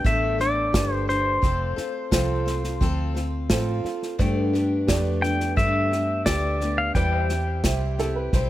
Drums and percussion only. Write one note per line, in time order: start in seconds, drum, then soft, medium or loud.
0.05 kick loud
0.05 snare soft
0.40 snare soft
0.74 kick medium
0.74 snare loud
0.74 hi-hat pedal medium
1.09 snare soft
1.43 kick loud
1.43 snare soft
1.77 snare soft
2.12 kick medium
2.12 snare loud
2.12 hi-hat pedal medium
2.47 snare soft
2.64 snare soft
2.81 kick loud
2.81 snare soft
3.16 snare soft
3.50 kick medium
3.50 snare loud
3.50 hi-hat pedal medium
3.85 snare soft
4.03 snare soft
4.19 kick loud
4.19 snare soft
4.54 snare soft
4.88 kick medium
4.88 snare loud
4.88 hi-hat pedal medium
5.23 snare soft
5.40 snare soft
5.57 kick loud
5.57 snare soft
5.92 snare soft
6.26 kick medium
6.26 snare loud
6.26 hi-hat pedal medium
6.61 snare soft
6.94 kick loud
6.94 snare soft
7.29 snare soft
7.64 kick medium
7.64 snare loud
7.64 hi-hat pedal medium
7.98 snare soft
8.33 kick loud
8.33 snare soft